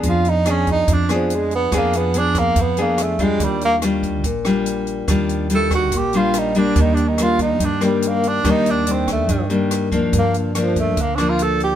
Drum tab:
HH |xxxxxxxx|xxxxxxxx|xxxxxxxx|xxxxxxxx|
SD |--r--r--|r--r--r-|--r--r--|r--r--r-|
BD |o--oo---|o--oo--o|o--oo---|o--oo---|

HH |xxxxxxxx|xxxxxxxx|xxxxxxxx|
SD |--r--r--|r--r--r-|--r--r--|
BD |o--oo---|o--oo--o|o--oo---|